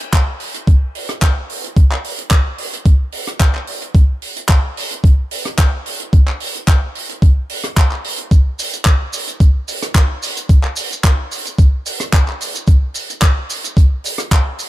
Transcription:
0.01 closed hi-hat medium
0.13 kick loud
0.13 clap loud
0.13 closed hi-hat medium
0.40 open hi-hat loud
0.54 closed hi-hat medium
0.67 kick loud
0.67 closed hi-hat medium
0.95 open hi-hat loud
1.09 cross-stick medium
1.09 closed hi-hat medium
1.22 kick loud
1.22 clap loud
1.22 closed hi-hat medium
1.50 open hi-hat loud
1.64 closed hi-hat medium
1.77 kick loud
1.77 closed hi-hat medium
1.92 clap soft
2.04 open hi-hat loud
2.19 closed hi-hat medium
2.31 kick loud
2.31 clap loud
2.31 closed hi-hat medium
2.58 open hi-hat loud
2.73 closed hi-hat medium
2.85 kick loud
2.85 closed hi-hat medium
3.12 open hi-hat loud
3.27 cross-stick medium
3.27 closed hi-hat medium
3.40 kick loud
3.40 clap loud
3.40 closed hi-hat medium
3.55 clap soft
3.67 open hi-hat loud
3.82 closed hi-hat medium
3.95 kick loud
3.95 closed hi-hat medium
4.22 open hi-hat loud
4.36 closed hi-hat medium
4.49 kick loud
4.49 clap loud
4.49 closed hi-hat medium
4.77 open hi-hat loud
4.91 closed hi-hat medium
5.04 kick loud
5.04 closed hi-hat medium
5.31 open hi-hat loud
5.45 cross-stick medium
5.45 closed hi-hat medium
5.58 kick loud
5.58 clap loud
5.58 closed hi-hat medium
5.86 open hi-hat loud
6.00 closed hi-hat medium
6.13 kick loud
6.13 closed hi-hat medium
6.28 clap soft
6.40 open hi-hat loud
6.55 closed hi-hat medium
6.68 kick loud
6.68 clap loud
6.68 closed hi-hat medium
6.95 open hi-hat loud
7.09 closed hi-hat medium
7.22 kick loud
7.22 closed hi-hat medium
7.49 open hi-hat loud
7.64 cross-stick medium
7.64 closed hi-hat medium
7.77 kick loud
7.77 clap loud
7.77 closed hi-hat medium
7.91 clap soft
8.04 open hi-hat loud
8.18 closed hi-hat medium
8.31 kick loud
8.31 closed hi-hat medium
8.31 shaker medium
8.59 open hi-hat loud
8.59 shaker medium
8.73 closed hi-hat medium
8.73 shaker medium
8.85 kick loud
8.85 clap loud
8.85 closed hi-hat medium
8.85 shaker soft
9.13 open hi-hat loud
9.13 shaker medium
9.27 closed hi-hat medium
9.27 shaker medium
9.40 kick loud
9.40 closed hi-hat medium
9.40 shaker medium
9.68 open hi-hat loud
9.68 shaker medium
9.82 cross-stick medium
9.82 closed hi-hat medium
9.82 shaker medium
9.95 kick loud
9.95 clap loud
9.95 closed hi-hat medium
9.95 shaker soft
10.23 open hi-hat loud
10.23 shaker medium
10.37 closed hi-hat medium
10.37 shaker medium
10.49 kick loud
10.49 closed hi-hat medium
10.49 shaker soft
10.63 clap soft
10.76 open hi-hat loud
10.76 shaker medium
10.91 closed hi-hat medium
10.91 shaker medium
11.04 kick loud
11.04 clap loud
11.04 closed hi-hat medium
11.04 shaker soft
11.31 open hi-hat loud
11.31 shaker medium
11.45 closed hi-hat medium
11.45 shaker medium
11.58 kick loud
11.58 closed hi-hat medium
11.58 shaker medium
11.86 open hi-hat loud
11.86 shaker medium
12.00 cross-stick medium
12.00 closed hi-hat medium
12.00 shaker medium
12.13 kick loud
12.13 clap loud
12.13 closed hi-hat medium
12.13 shaker medium
12.28 clap soft
12.40 open hi-hat loud
12.40 shaker medium
12.54 closed hi-hat medium
12.54 shaker medium
12.67 kick loud
12.67 closed hi-hat medium
12.67 shaker medium
12.94 open hi-hat medium
12.94 shaker medium
13.10 closed hi-hat medium
13.10 shaker medium
13.22 kick loud
13.22 clap loud
13.22 closed hi-hat medium
13.22 shaker medium
13.49 open hi-hat loud
13.49 shaker medium
13.64 closed hi-hat medium
13.64 shaker medium
13.77 kick loud
13.77 closed hi-hat medium
13.77 shaker medium
14.04 open hi-hat loud
14.04 shaker medium
14.18 cross-stick medium
14.18 closed hi-hat medium
14.18 shaker medium
14.31 kick loud
14.31 clap loud
14.31 closed hi-hat medium
14.31 shaker medium
14.58 open hi-hat loud
14.58 shaker medium

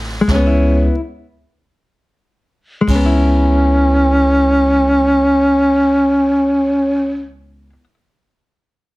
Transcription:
0.00 0.24 A1 medium
0.00 0.26 D3 soft
0.00 0.21 A3 soft
0.00 0.29 C4 soft
0.00 0.29 F#4 soft
0.21 0.87 G#3 soft
0.28 0.87 C#2 medium
0.28 0.88 C#4 medium
0.28 kick soft
0.28 snare medium
0.35 0.94 B3 medium
0.47 1.00 E4 medium
2.81 7.69 G#3 soft
2.88 7.72 C#2 medium
2.88 7.27 C#4 medium
2.88 kick soft
2.88 crash soft
2.95 7.84 B3 soft
3.06 7.94 E4 medium

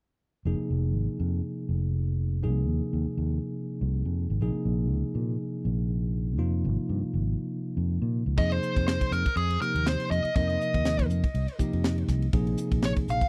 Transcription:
0.45 0.57 F1 medium
0.45 2.40 C3 medium
0.45 2.40 F3 soft
0.45 2.40 A#3 soft
0.45 2.40 D#4 soft
0.45 2.40 G#4 medium
0.59 muted fingered electric bass stroke soft
0.70 0.95 F1 medium
0.95 1.06 G#1 medium
1.20 1.40 F2 medium
1.69 2.45 F1 medium
2.42 2.68 C2 medium
2.42 4.37 C3 medium
2.42 4.37 F3 soft
2.42 4.37 A#3 soft
2.42 4.38 D#4 soft
2.42 4.38 G#4 medium
2.68 2.79 D#2 medium
2.93 3.04 D#2 medium
3.06 muted fingered electric bass stroke soft
3.18 3.38 D#2 medium
3.81 4.01 C2 medium
4.05 4.26 F2 medium
4.30 4.39 G#1 medium
4.41 4.52 A#1 medium
4.41 6.35 C3 medium
4.41 6.36 F3 soft
4.41 6.36 A#3 medium
4.41 6.36 D#4 medium
4.41 6.36 G#4 medium
4.55 muted fingered electric bass stroke soft
4.65 4.90 A#1 medium
4.90 5.02 C#2 medium
5.15 5.36 A#2 medium
5.65 6.39 A#1 medium
6.38 6.66 F2 medium
6.38 8.33 C3 medium
6.38 8.33 F3 medium
6.38 8.33 A#3 soft
6.38 8.33 D#4 soft
6.38 8.33 F4 medium
6.65 6.76 G#1 medium
6.89 7.00 G2 medium
7.03 muted fingered electric bass stroke soft
7.14 7.34 G#1 medium
7.77 7.97 F2 medium
8.02 8.22 A#2 medium
8.26 8.35 C#2 medium
8.37 8.58 F2 medium
8.37 9.26 C3 medium
8.37 9.26 F3 medium
8.37 9.26 A#3 soft
8.37 9.26 D#4 medium
8.37 9.26 G#4 medium
8.37 8.52 D#5 medium
8.37 kick medium
8.37 crash medium
8.52 8.87 C5 medium
8.52 ride soft
8.63 hi-hat pedal medium
8.76 8.97 F2 medium
8.76 kick medium
8.76 ride soft
8.88 9.13 C5 medium
8.88 snare medium
8.88 ride medium
9.01 kick medium
9.01 ride medium
9.11 9.23 F2 medium
9.11 9.37 A#4 medium
9.11 hi-hat pedal medium
9.26 kick medium
9.26 ride soft
9.36 9.56 F2 medium
9.36 9.61 G#4 medium
9.36 ride medium
9.50 ride medium
9.61 10.28 C3 medium
9.61 10.28 F3 soft
9.61 10.28 A#3 medium
9.61 10.28 D#4 soft
9.61 10.28 G4 medium
9.61 9.87 A#4 medium
9.61 hi-hat pedal medium
9.75 9.95 D#2 medium
9.75 ride medium
9.86 10.11 C5 medium
9.86 snare medium
9.86 ride medium
10.00 snare soft
10.00 ride medium
10.11 10.22 F2 medium
10.11 10.34 D#5 medium
10.11 snare soft
10.11 hi-hat pedal medium
10.24 muted fingered electric bass stroke soft
10.24 ride medium
10.36 10.56 F2 medium
10.36 11.24 C3 medium
10.36 11.24 F3 medium
10.36 11.24 A#3 medium
10.36 11.24 D#4 medium
10.36 11.25 A#4 medium
10.36 11.06 D#5 medium
10.36 kick medium
10.36 ride medium
10.50 ride soft
10.61 hi-hat pedal medium
10.74 11.09 D#2 medium
10.74 kick medium
10.74 ride soft
10.85 snare medium
10.85 ride medium
10.99 kick medium
10.99 ride medium
11.09 11.21 F2 medium
11.09 hi-hat pedal medium
11.24 kick medium
11.24 ride soft
11.34 11.46 C2 medium
11.34 ride medium
11.48 ride medium
11.59 12.25 C3 medium
11.59 12.25 F3 medium
11.59 12.26 A#3 medium
11.59 12.26 D#4 medium
11.59 12.26 G4 medium
11.59 muted fingered electric bass stroke soft
11.59 kick medium
11.59 hi-hat pedal medium
11.73 12.02 F2 medium
11.73 ride soft
11.84 snare medium
11.84 ride medium
11.98 ride soft
12.08 12.29 C2 medium
12.08 kick medium
12.08 snare soft
12.08 hi-hat pedal medium
12.22 ride soft
12.33 12.54 A#1 medium
12.33 13.22 C3 medium
12.33 13.22 F3 medium
12.33 13.22 A#3 medium
12.33 13.22 D#4 medium
12.33 13.22 G#4 medium
12.33 kick medium
12.33 ride medium
12.47 ride soft
12.57 hi-hat pedal medium
12.72 12.92 A#1 medium
12.72 kick medium
12.72 ride soft
12.82 12.92 C#5 medium
12.82 snare medium
12.82 ride medium
12.97 kick medium
12.97 ride medium
13.08 13.19 A#1 medium
13.08 13.29 F5 medium
13.08 hi-hat pedal medium
13.21 kick medium
13.21 ride soft

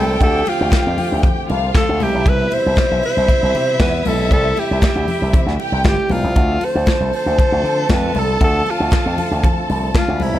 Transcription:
0.00 0.16 C2 loud
0.00 1.97 D3 medium
0.00 1.97 F3 medium
0.00 1.97 A3 medium
0.00 1.97 C4 medium
0.00 0.19 F4 medium
0.00 1.45 G4 medium
0.00 0.22 A4 medium
0.00 1.45 G5 loud
0.20 0.41 D2 loud
0.20 1.98 G4 medium
0.20 0.51 A4 loud
0.20 kick loud
0.20 closed hi-hat medium
0.20 muted conga medium
0.45 open hi-hat medium
0.45 muted conga medium
0.49 1.50 F4 medium
0.61 0.70 D2 loud
0.70 kick loud
0.70 snare loud
0.70 closed hi-hat medium
0.70 high conga medium
0.87 0.96 F2 medium
0.98 open hi-hat medium
0.98 low conga medium
1.12 1.21 D2 medium
1.23 kick loud
1.23 closed hi-hat medium
1.23 muted conga medium
1.23 low conga medium
1.49 1.70 C2 medium
1.49 1.99 F4 medium
1.49 1.99 F5 medium
1.49 open hi-hat medium
1.49 muted conga soft
1.75 2.04 A4 loud
1.75 kick loud
1.75 snare loud
1.75 closed hi-hat medium
1.75 high conga medium
1.89 1.98 D2 loud
1.99 2.11 C2 loud
1.99 4.03 B2 medium
1.99 6.31 C3 medium
1.99 6.31 E3 medium
1.99 6.31 G3 medium
1.99 6.31 E4 medium
1.99 5.55 E4 medium
1.99 2.30 G4 loud
1.99 5.55 E5 loud
1.99 open hi-hat medium
1.99 high conga medium
2.14 2.24 B1 medium
2.25 2.46 C2 loud
2.25 2.55 B4 loud
2.25 kick loud
2.25 closed hi-hat medium
2.25 muted conga medium
2.50 3.04 C5 loud
2.50 open hi-hat medium
2.50 muted conga soft
2.66 2.75 C2 loud
2.75 kick loud
2.75 snare loud
2.75 closed hi-hat medium
2.75 high conga medium
2.91 3.01 B1 medium
3.03 3.77 C5 loud
3.03 open hi-hat medium
3.17 3.26 C2 medium
3.28 kick loud
3.28 closed hi-hat medium
3.28 muted conga medium
3.43 3.52 C2 loud
3.55 3.75 C3 loud
3.55 open hi-hat medium
3.55 muted conga soft
3.79 4.00 E2 loud
3.79 4.09 B4 loud
3.79 kick loud
3.79 snare loud
3.79 closed hi-hat medium
3.79 high conga medium
4.05 4.31 B1 loud
4.05 10.16 A3 medium
4.05 4.32 A4 medium
4.05 open hi-hat medium
4.05 high conga medium
4.31 4.52 C2 loud
4.31 4.61 A4 loud
4.31 kick loud
4.31 closed hi-hat medium
4.31 muted conga medium
4.56 5.61 G4 medium
4.56 open hi-hat medium
4.56 muted conga medium
4.71 4.80 C2 medium
4.81 kick loud
4.81 snare loud
4.81 closed hi-hat medium
4.81 high conga medium
4.95 5.05 D2 loud
5.08 open hi-hat medium
5.08 low conga medium
5.22 5.31 C2 medium
5.33 5.44 C3 loud
5.33 kick loud
5.33 closed hi-hat medium
5.33 muted conga medium
5.33 low conga medium
5.46 5.56 D2 loud
5.46 snare soft
5.59 6.09 G4 medium
5.59 6.09 G5 medium
5.59 open hi-hat medium
5.59 muted conga soft
5.72 5.82 C2 loud
5.84 5.96 G1 medium
5.84 6.14 G4 loud
5.84 kick loud
5.84 snare loud
5.84 closed hi-hat medium
5.84 high conga medium
6.09 6.21 B1 medium
6.09 6.66 F4 loud
6.09 open hi-hat medium
6.09 high conga medium
6.24 6.33 C2 medium
6.36 6.57 D2 loud
6.36 10.16 D3 medium
6.36 10.16 F3 medium
6.36 10.16 C4 medium
6.36 10.17 F4 medium
6.36 10.16 A4 medium
6.36 10.16 A5 medium
6.36 kick loud
6.36 closed hi-hat medium
6.36 muted conga medium
6.61 open hi-hat medium
6.61 muted conga medium
6.65 7.14 C5 loud
6.75 6.85 D2 loud
6.86 kick loud
6.86 snare loud
6.86 closed hi-hat medium
6.86 high conga medium
7.00 7.10 C2 medium
7.13 7.95 C5 loud
7.13 open hi-hat medium
7.26 7.36 D2 medium
7.38 kick loud
7.38 closed hi-hat medium
7.38 muted conga medium
7.52 7.62 D2 loud
7.64 7.84 D3 loud
7.64 open hi-hat medium
7.89 8.10 F2 medium
7.89 kick loud
7.89 snare loud
7.89 closed hi-hat medium
7.89 high conga medium
7.93 8.20 B4 loud
8.15 8.36 C2 medium
8.15 8.42 A4 medium
8.15 open hi-hat medium
8.15 high conga medium
8.40 8.61 D2 loud
8.40 8.72 A4 loud
8.40 kick loud
8.40 closed hi-hat medium
8.40 muted conga medium
8.65 open hi-hat medium
8.65 muted conga soft
8.71 9.71 F4 medium
8.80 8.90 D2 loud
8.90 kick loud
8.90 snare loud
8.90 closed hi-hat medium
8.90 high conga medium
9.06 9.15 F2 medium
9.18 open hi-hat medium
9.18 low conga medium
9.31 9.41 D2 medium
9.44 kick loud
9.44 closed hi-hat medium
9.44 muted conga medium
9.44 low conga medium
9.69 9.90 C2 medium
9.69 open hi-hat medium
9.69 muted conga soft
9.95 10.24 F4 loud
9.95 kick loud
9.95 snare loud
9.95 closed hi-hat medium
9.95 high conga medium
10.08 10.18 D2 loud
10.20 10.31 C2 loud
10.20 10.39 B2 medium
10.20 10.39 C3 medium
10.20 10.39 E3 medium
10.20 10.39 G3 medium
10.20 10.39 E4 medium
10.20 10.39 C5 medium
10.20 10.39 B5 medium
10.20 open hi-hat medium
10.20 high conga medium
10.34 10.39 B1 medium

